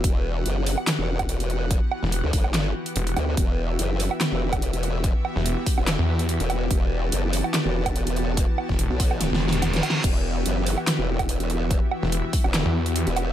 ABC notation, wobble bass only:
X:1
M:4/4
L:1/16
Q:"Swing 16ths" 1/4=144
K:Em
V:1 name="Wobble bass" clef=bass
E,,,4 F,,,3 z2 E,,,6- E,,,- | E,,, z4 D,, G,,,4 z4 D,,2 | E,,,4 F,,,3 z2 E,,,6- E,,,- | E,,, z6 E,,,2 z4 E,,,3 |
E,,,4 F,,,3 z2 E,,,6- E,,,- | E,,, z4 B,,,4 z4 E,,, z2 | E,,,4 F,,,3 z2 E,,,6- E,,,- | E,,, z6 E,,,2 z4 E,,,3 |]